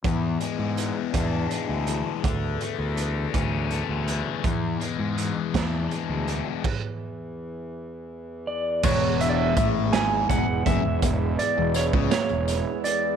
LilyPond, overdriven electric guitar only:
\new Staff \with { instrumentName = "Overdriven electric guitar" } { \clef bass \time 6/8 \key e \mixolydian \tempo 4. = 55 e,8 gis8 e8 d'8 gis8 e8 | d8 a8 d8 cis'8 a8 d8 | e,8 gis8 e8 d'8 gis8 e8 | r2. |
e,4 a,8 gis,8 e,16 e,16 fis,16 e,16 | e,8 r16 e,8 cis16 r16 e,8 r8. | }